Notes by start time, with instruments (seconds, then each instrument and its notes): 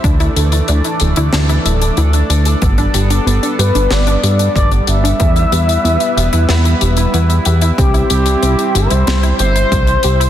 0.04 analog synth bass D2, analog synth pad E3 A3 D4 A4 D5, synth arpeggio sound D4, kick, closed hi-hat
0.20 synth arpeggio sound E4, closed hi-hat
0.36 analog synth bass D2, synth arpeggio sound A4, closed hi-hat
0.52 synth arpeggio sound E4, closed hi-hat
0.68 analog synth bass D2, synth arpeggio sound D4, closed hi-hat
0.84 synth arpeggio sound E4, closed hi-hat
1.00 analog synth bass D1, synth arpeggio sound A4, closed hi-hat
1.16 analog synth bass D2, synth arpeggio sound E4, closed hi-hat
1.33 analog synth bass D2, synth arpeggio sound D4, snare, closed hi-hat
1.49 synth arpeggio sound E4, closed hi-hat
1.66 analog synth bass D1, synth arpeggio sound E5, closed hi-hat
1.82 synth arpeggio sound A4, closed hi-hat
1.97 analog synth bass D2, synth arpeggio sound E4, closed hi-hat
2.13 synth arpeggio sound D4, closed hi-hat
2.30 analog synth bass D2, synth arpeggio sound D4, closed hi-hat
2.45 synth arpeggio sound A4, closed hi-hat
2.62 analog synth bass G1, analog synth pad G3 B3, synth arpeggio sound B3, kick, closed hi-hat
2.78 synth arpeggio sound D4, closed hi-hat
2.94 analog synth bass G1, synth arpeggio sound G4, closed hi-hat
3.10 synth arpeggio sound D4, closed hi-hat
3.27 analog synth bass G1, synth arpeggio sound B3, closed hi-hat
3.43 synth arpeggio sound D4, closed hi-hat
3.59 analog synth bass G2, synth arpeggio sound G4, analog synth lead B4, closed hi-hat
3.75 analog synth bass G1, synth arpeggio sound D4, closed hi-hat
3.91 analog synth bass G1, synth arpeggio sound B3, analog synth lead D5, snare, closed hi-hat
4.07 synth arpeggio sound D4, closed hi-hat
4.23 analog synth bass G2, synth arpeggio sound G4, closed hi-hat
4.39 synth arpeggio sound D4, closed hi-hat
4.55 analog synth bass G1, synth arpeggio sound B3, analog synth lead D5, kick, closed hi-hat
4.71 synth arpeggio sound D4, closed hi-hat
4.87 analog synth bass G1, synth arpeggio sound G4, analog synth lead E5, closed hi-hat
5.04 synth arpeggio sound D4, closed hi-hat
5.20 analog synth bass E2, synth arpeggio sound B3, analog synth pad B3 E4 B4 E5, kick, closed hi-hat
5.36 synth arpeggio sound E4, closed hi-hat
5.52 analog synth bass E2, synth arpeggio sound G4, closed hi-hat
5.68 synth arpeggio sound E4, closed hi-hat
5.84 analog synth bass E2, synth arpeggio sound B3, closed hi-hat
6.00 synth arpeggio sound E4, closed hi-hat
6.17 analog synth bass E1, synth arpeggio sound G4, closed hi-hat
6.33 analog synth bass E2, synth arpeggio sound E4, closed hi-hat
6.49 analog synth bass E2, synth arpeggio sound B3, snare, closed hi-hat
6.65 synth arpeggio sound E4, closed hi-hat
6.81 analog synth bass E1, synth arpeggio sound G4, closed hi-hat
6.97 synth arpeggio sound E4, closed hi-hat
7.14 analog synth bass E2, synth arpeggio sound B3, closed hi-hat
7.30 synth arpeggio sound E4, closed hi-hat
7.45 analog synth bass E2, synth arpeggio sound G4, closed hi-hat
7.61 synth arpeggio sound E4, closed hi-hat
7.78 analog synth bass C2, analog synth pad G3 C4 C5, synth arpeggio sound C4, analog synth lead G4, kick, closed hi-hat
7.94 synth arpeggio sound E4, closed hi-hat
8.10 analog synth bass C2, synth arpeggio sound G4, analog synth lead G4, closed hi-hat
8.26 synth arpeggio sound E4, closed hi-hat
8.43 analog synth bass C2, synth arpeggio sound C4, closed hi-hat
8.59 synth arpeggio sound E4, closed hi-hat
8.75 analog synth bass G1, synth arpeggio sound G4, analog synth lead C5, closed hi-hat
8.90 analog synth bass C2, synth arpeggio sound E4, closed hi-hat
9.07 analog synth bass C2, synth arpeggio sound C4, snare, closed hi-hat
9.23 synth arpeggio sound E4, closed hi-hat
9.39 analog synth bass G1, synth arpeggio sound G4, analog synth lead C5, closed hi-hat
9.56 synth arpeggio sound E4, closed hi-hat
9.72 analog synth bass C2, synth arpeggio sound C4, kick, closed hi-hat
9.87 synth arpeggio sound E4, closed hi-hat
10.03 analog synth bass C2, synth arpeggio sound G4, closed hi-hat
10.20 synth arpeggio sound E4, closed hi-hat